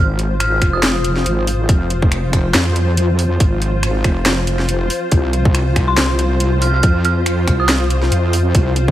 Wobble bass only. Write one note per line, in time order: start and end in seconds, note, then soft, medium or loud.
0.00 0.60 G#1 medium
0.62 1.24 F1 loud
1.26 1.67 G#1 loud
1.69 2.53 F1 medium
2.54 3.39 F2 loud
3.40 4.03 G#1 loud
4.05 4.89 F1 loud
5.12 5.96 C2 medium
5.97 6.82 C2 medium
6.83 7.46 F2 loud
7.48 8.10 C2 loud
8.12 8.53 F2 loud
8.55 8.91 C2 loud